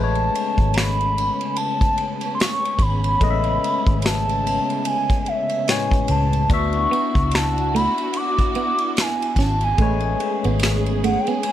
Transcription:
Already playing: fingered electric bass A1, string section C#3 B3 C#4, tine electric piano G#3 A3 B4, soft synth lead A5
0.04 tine electric piano C#5
0.15 ride
0.35 ride
0.58 fingered electric bass G#1, kick, ride
0.74 soft synth lead B5, finger snap, snare, ride
1.01 ride
1.18 ride
1.41 ride
1.56 soft synth lead A5, ride
1.81 kick, ride
1.98 ride
2.21 ride
2.35 soft synth lead C6
2.40 soft synth lead C#6, finger snap, snare, ride
2.65 ride
2.79 fingered electric bass G#1, soft synth lead B5, kick, ride
3.04 ride
3.21 fingered electric bass A1, tine electric piano G#3 A3 B4 D#5, kick, ride
3.30 tine electric piano E5
3.44 ride
3.64 ride
3.87 fingered electric bass G#1, kick, ride
4.02 soft synth lead A5, finger snap, snare, ride
4.29 ride
4.47 ride
4.70 ride
4.85 soft synth lead G#5, ride
5.10 kick, ride
5.26 soft synth lead E5, ride
5.49 ride
5.68 tine electric piano A2 G#3 B4 C#5, soft synth lead G#5, finger snap, snare, ride
5.91 kick, ride
6.08 fingered electric bass C#2, soft synth lead A5, ride
6.33 ride
6.49 fingered electric bass D2, string section B3 D4 E4 F#4, tine electric piano B3 D4 F#4, soft synth lead C#6, kick, ride
6.54 tine electric piano E5
6.73 ride
6.91 clean electric guitar B3, ride
7.15 fingered electric bass C#2, kick, ride
7.31 soft synth lead A5, finger snap, snare, ride
7.58 ride
7.75 clean electric guitar A3, soft synth lead B5, ride
7.98 ride
8.14 soft synth lead D6, ride
8.39 kick, ride
8.55 clean electric guitar B3, ride
8.78 ride
8.97 soft synth lead G#5, finger snap, snare, ride
9.22 ride
9.36 fingered electric bass G#1, clean electric guitar C#4, soft synth lead A5, kick, snare, ride
9.61 soft synth lead G#5, ride
9.78 fingered electric bass A1, tine electric piano G#3 A3 B4 C#5, clean electric guitar A3, string section B3 C#4 G#4, kick, ride
10.00 ride
10.20 muted clean electric guitar stroke, ride
10.44 fingered electric bass G#1, clean electric guitar B3, ride
10.59 finger snap, muted clean electric guitar stroke, snare, ride
10.86 ride
11.04 clean electric guitar A3, soft synth lead F#5, ride
11.20 soft synth lead G5
11.27 clean electric guitar B3, soft synth lead G#5, ride
11.43 muted clean electric guitar stroke, ride

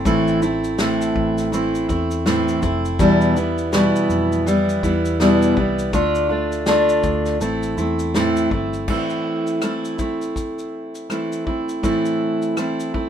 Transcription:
0.05 fingered electric bass A1, steel-string acoustic guitar A2 E3 A3 C4 E4, kick, shaker
0.27 shaker
0.42 steel-string acoustic guitar A3 C4 E4, shaker
0.64 shaker
0.78 steel-string acoustic guitar A2 E3 A3 C4 E4, snare, shaker
1.02 shaker
1.16 fingered electric bass A1, kick
1.38 snare, shaker
1.52 steel-string acoustic guitar E3 A3 C4 E4, shaker
1.75 shaker
1.89 fingered electric bass E2, steel-string acoustic guitar A3 C4 E4, kick, shaker
2.11 shaker
2.26 steel-string acoustic guitar A2 E3 A3 C4 E4, snare, shaker
2.48 shaker
2.62 fingered electric bass F1, steel-string acoustic guitar A3 C4 E4, kick, shaker
2.85 shaker
2.99 steel-string acoustic guitar E2 B2 E3 G3 B3 E4, fingered electric bass E2, kick, shaker
3.21 shaker
3.36 steel-string acoustic guitar E3 G3 B3 E4, shaker
3.58 shaker
3.73 steel-string acoustic guitar B2 E3 G3 B3 E4, snare, shaker
3.96 shaker
4.09 fingered electric bass F2, shaker
4.32 shaker
4.46 steel-string acoustic guitar E3 G3 B3 E4, shaker
4.69 shaker
4.83 fingered electric bass E2, steel-string acoustic guitar E3 G3 B3 E4, kick, shaker
5.05 shaker
5.20 steel-string acoustic guitar E2 B2 E3 G3 B3 E4, snare, shaker
5.42 shaker
5.56 fingered electric bass C2, steel-string acoustic guitar E3 G3 B3 E4, kick
5.79 shaker
5.93 fingered electric bass D2, steel-string acoustic guitar D3 A3 D4 F4, kick, shaker
6.15 shaker
6.29 steel-string acoustic guitar A3 D4 F4
6.52 shaker
6.66 steel-string acoustic guitar D3 A3 D4 F4, snare, shaker
6.89 shaker
7.03 fingered electric bass D2, kick, shaker
7.26 snare, shaker
7.40 fingered electric bass A1, steel-string acoustic guitar E3 A3 C4 E4, shaker
7.63 shaker
7.77 fingered electric bass E2, steel-string acoustic guitar A3 C4 E4, shaker
7.99 shaker
8.14 steel-string acoustic guitar A2 E3 A3 C4 E4, snare, shaker
8.36 shaker
8.51 fingered electric bass G1, steel-string acoustic guitar A3 C4 E4, kick
8.73 shaker
8.88 steel-string acoustic guitar A2 E3 A3 C4 E4, kick, crash
9.10 shaker
9.47 shaker
9.62 steel-string acoustic guitar E3 A3 C4 E4, cross-stick, shaker
9.85 shaker
9.99 steel-string acoustic guitar A3 C4 E4, kick, shaker
10.22 shaker
10.36 kick, shaker
10.59 shaker
10.95 shaker
11.10 steel-string acoustic guitar E3 A3 C4 E4, cross-stick, shaker
11.32 shaker
11.46 steel-string acoustic guitar A3 C4 E4, kick
11.69 shaker
11.83 steel-string acoustic guitar A2 E3 A3 C4 E4, kick, shaker
12.05 shaker
12.42 shaker
12.57 steel-string acoustic guitar E3 A3 C4 E4, cross-stick, shaker
12.80 shaker
12.94 steel-string acoustic guitar A3 C4 E4, kick

